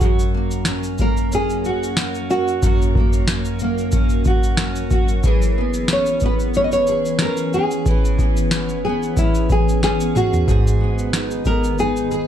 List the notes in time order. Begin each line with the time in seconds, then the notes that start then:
Already playing: C#4 F#4
0.00 F#2 F#3 A#3 C#4 F#4 A#4, kick, shaker
0.19 shaker
0.34 A#3
0.51 shaker
0.65 C#4, snare, shaker
0.83 shaker
0.98 A#3 A#4, kick, shaker
1.17 shaker
1.32 C#4 G#4, shaker
1.50 shaker
1.65 F#4, shaker
1.83 shaker
1.97 C#4, snare, shaker
2.15 shaker
2.30 F#4, shaker
2.48 shaker
2.63 F#2 F#4, kick, shaker
2.82 shaker
2.95 A#3, kick
3.13 shaker
3.28 C#4, snare, shaker
3.45 shaker
3.59 A#3, shaker
3.78 shaker
3.92 C#4, kick, shaker
4.09 shaker
4.25 F#4, kick, shaker
4.43 shaker
4.57 C#4, snare, shaker
4.76 shaker
4.90 F#4, kick, shaker
5.08 shaker
5.23 E3 B3 G#4, kick, shaker
5.42 shaker
5.58 B3
5.74 shaker
5.88 C#4, snare, shaker
5.93 C#5
6.06 shaker
6.20 B3, kick, shaker
6.25 B4
6.40 shaker
6.54 C#4 C#5, shaker
6.64 D#5
6.72 C#5, shaker
6.87 G#4, shaker
7.06 shaker
7.19 C#4 A#4, snare, shaker
7.37 shaker
7.53 G#4, shaker
7.71 shaker
7.86 E3 G#4, kick, shaker
8.05 shaker
8.19 B3, kick, shaker
8.37 shaker
8.51 C#4, snare, shaker
8.69 shaker
8.85 B3 G#4
9.03 shaker
9.17 C#4 E4, kick, shaker
9.35 shaker
9.50 G#4, kick, shaker
9.69 shaker
9.83 C#4 G#4, snare, shaker
10.00 shaker
10.15 F#4 G#4, mid tom, shaker
10.33 floor tom, shaker
10.47 G#2 D#3 G#3 G#4, kick, shaker
10.67 shaker
10.81 B3
10.99 shaker
11.13 D#4, snare, shaker
11.31 shaker
11.45 B3 A#4, kick, shaker
11.64 shaker
11.79 D#4 G#4, shaker
11.97 shaker
12.11 G#4, shaker